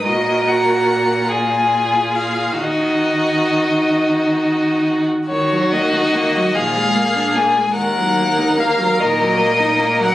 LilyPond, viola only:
\new Staff \with { instrumentName = "Viola" } { \time 6/8 \key ees \minor \tempo 4. = 48 ges'4. f'4. | ees'2~ ees'8. r16 | ees16 ges16 bes16 ees'16 bes16 ges16 f16 aes16 bes16 d'16 bes16 aes16 | ees16 ges16 bes16 ees'16 bes16 ges16 ees16 ges16 bes16 ees'16 bes16 ges16 | }